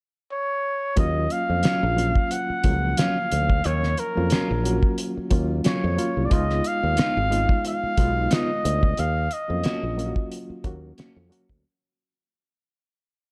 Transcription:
0.32 C#5
0.96 D#2 F#3 A#3 C#4 F4 D#5, kick, closed hi-hat
1.30 F5, closed hi-hat
1.50 F2
1.63 F#3 C#4 F4, muted fingered electric bass stroke, snare, closed hi-hat
1.83 A#1
1.96 F#3 A#3 C#4 F4, closed hi-hat
2.16 kick
2.31 F#5, closed hi-hat
2.50 muted fingered electric bass stroke
2.64 C#2 F3 A#3 C#4, kick, closed hi-hat
2.70 F#3
2.97 F#3 C#4 F4 F5, snare, closed hi-hat
3.32 D2, closed hi-hat
3.50 kick
3.64 D#2 C#5, closed hi-hat
3.83 snare
3.97 A#4, closed hi-hat
4.15 F2 F#3 A#3 C#4 F4
4.30 F#3 C#4 F4, muted fingered electric bass stroke, snare, closed hi-hat
4.51 A#1
4.64 F#3 A#3 C#4 F#4, closed hi-hat
4.83 kick
4.98 closed hi-hat
5.17 muted fingered electric bass stroke
5.30 D#2 F#3 A#3 C#4 F4, kick, closed hi-hat
5.64 F#3 C#4 F4 C#5, muted fingered electric bass stroke, snare, closed hi-hat
5.84 F2
5.96 F#3 A#3 C#4 F4, closed hi-hat
6.17 C2
6.25 D5
6.30 C#2 G#3 B3 D#4 F4 D#5, kick, closed hi-hat
6.50 snare
6.64 F5, closed hi-hat
6.83 D#2
6.97 B3 D#4 F4, muted fingered electric bass stroke, snare, closed hi-hat
7.17 G#1
7.30 G#3 B3 D#4 F4, closed hi-hat
7.49 kick
7.65 F5, closed hi-hat
7.83 muted fingered electric bass stroke
7.97 B1 G#3 B3 D#4 F4, kick, closed hi-hat
8.31 B3 D#4 F4 D#5, snare, closed hi-hat
8.65 D2, closed hi-hat
8.83 kick
8.97 D#2 F5, closed hi-hat
9.31 D#5, closed hi-hat
9.48 F2 F#3 A#3 C#4 F4
9.64 A#3 C#4 F#4, muted fingered electric bass stroke, snare, closed hi-hat
9.83 A#1
9.97 F#3 A#3 C#4 F4, closed hi-hat
10.06 F#4
10.16 kick
10.32 closed hi-hat
10.50 muted fingered electric bass stroke
10.64 D#2 F#3 A#3 C#4 F#4, kick, closed hi-hat
10.98 A#3 C#4 F#4, muted fingered electric bass stroke, snare, closed hi-hat
11.16 F2
11.29 F#3 A#3 C#4 F#4, closed hi-hat
11.49 D2, kick

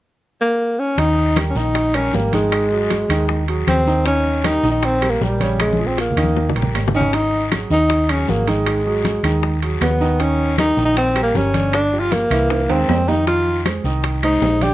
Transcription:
0.41 A#3
0.79 C#4
0.98 D#2 D#3 D#4 D#5, high bongo, high conga, high timbale, long guiro
1.17 high conga
1.36 G3 G4 A#4, high bongo, high conga, high timbale, short guiro, claves
1.50 C#4
1.55 A#1 D#3 D#4 D#5, high bongo, high conga, short guiro
1.75 high bongo, high conga, high timbale, long guiro
1.94 G3 C#4 G4 A#4, high bongo, high conga, high timbale, claves
2.13 G#1 G3 A#3 G4 A#4, high bongo, low bongo, high conga, short guiro
2.33 D#3 G#3 D#4 D#5, high bongo, high conga, high timbale, short guiro
2.52 high bongo, high conga, high timbale, long guiro, claves
2.71 F#3 F#4 G#4, high conga
2.90 high bongo, high conga, high timbale, short guiro
3.09 D#2 D#3 D#4 D#5, high bongo, high conga, high timbale, short guiro, claves
3.29 high bongo, high conga, long guiro
3.48 F#3 F#4 G#4, high bongo, high conga, high timbale
3.67 D#2 C4, high bongo, low bongo, high conga, high timbale, short guiro, claves
3.87 D#3 D#4 D#5, high bongo, high conga, short guiro
4.06 D#3 C#4 D#4 D#5, high bongo, high conga, high timbale, long guiro
4.25 high conga
4.44 G3 D#4 G4 A#4, high bongo, high conga, high timbale, short guiro, claves
4.63 A#1 D#3 D#4 D#5, high bongo, high conga, short guiro
4.71 D#4
4.83 C4, high bongo, high conga, high timbale, long guiro
5.02 G3 G4 A#4, high bongo, high conga, high timbale, claves
5.10 A#3
5.21 A#1 G3 G4 A#4, high bongo, low bongo, high conga, short guiro
5.40 C#3 C#4 C#5, high bongo, high conga, high timbale, short guiro
5.60 G#3, high bongo, high conga, high timbale, long guiro, claves
5.73 high conga
5.79 F3 F4 G#4
5.85 C4, high conga
5.98 A#3, high bongo, high timbale, short guiro
6.10 low conga
6.17 D#2 D#3 D#4 D#5, high bongo, high timbale, short guiro, claves
6.24 high conga
6.37 high bongo, long guiro
6.49 high bongo, low conga
6.55 A#1 G3 G4 A#4, high timbale
6.62 low bongo, low conga
6.74 G#1, high timbale, low timbale, short guiro, claves
6.88 low bongo, low conga
6.94 D#3 C#4 D#4 D#5, short guiro
7.01 low bongo, low conga
7.13 D#3 D#4, high bongo, high conga, high timbale, long guiro
7.33 high conga
7.52 F#3 F#4 G#4, high bongo, high conga, high timbale, short guiro, claves
7.70 D#2 D#3 D#4 D#5, high bongo, high conga, short guiro
7.90 high bongo, high conga, high timbale, long guiro
8.09 F#3 C#4 F#4 G#4, high bongo, high conga, high timbale, claves
8.28 G#1 F#3 A#3 F#4 G#4, high bongo, low bongo, high conga, short guiro
8.47 D#3 G#3 D#4 D#5, high bongo, high conga, high timbale, short guiro
8.66 high bongo, high timbale, long guiro, claves
8.86 F#3 F#4 G#4, high conga
9.05 high bongo, high conga, high timbale, short guiro
9.23 D#2 D#3 D#4 D#5, high bongo, high conga, high timbale, short guiro, claves
9.43 high bongo, high conga, long guiro
9.62 F#3 F#4 G#4, high bongo, high conga, high timbale
9.81 D#2 B3, high bongo, low bongo, high conga, high timbale, low timbale, short guiro, claves
10.01 D#3 D#4 D#5, high bongo, high conga, short guiro
10.20 D#3 C#4 D#4 D#5, high bongo, high conga, high timbale, long guiro
10.39 high conga
10.58 G3 D#4 G4 A#4, high bongo, high conga, high timbale, short guiro, claves
10.77 A#1 D#3 D#4 D#5, high bongo, high conga, short guiro
10.85 D#4
10.97 C4, high bongo, high conga, high timbale, long guiro
11.16 G3 G4 A#4, high bongo, high conga, high timbale, claves
11.23 A#3
11.34 G1 G3 C#4 G4 A#4, high bongo, low bongo, high conga, short guiro
11.54 D3 D4 D5, high bongo, high conga, high timbale, short guiro
11.73 D4, high bongo, high conga, high timbale, long guiro, claves
11.92 F3 F4 G4, high conga
12.00 F4
12.12 A#3, high bongo, high conga, high timbale, short guiro
12.30 C2 E3 E4 E5, high bongo, high conga, high timbale, short guiro, claves
12.50 high bongo, high conga, high timbale, long guiro
12.69 D#2 G#3 C4 G#4 A#4, high bongo, high conga, high timbale
12.88 F2, high bongo, low bongo, high conga, low timbale, short guiro, claves
13.08 D#3 D#4 D#5, high bongo, high conga, low timbale, short guiro
13.27 D#3 D#4 F4 D#5, high bongo, high conga, high timbale, long guiro
13.46 high conga
13.66 G#3 G#4 C5, high bongo, high conga, high timbale, short guiro, claves
13.84 C2 D#3 D#4 D#5, high bongo, high conga, short guiro
14.04 high bongo, high conga, high timbale, long guiro
14.23 G#3 D#4 G#4 C5, high bongo, high conga, high timbale, claves
14.42 A#1 G#3 G#4 C5, high bongo, low bongo, high conga, low timbale, short guiro
14.61 D3 D4 G4 D5, high bongo, high conga, high timbale, short guiro

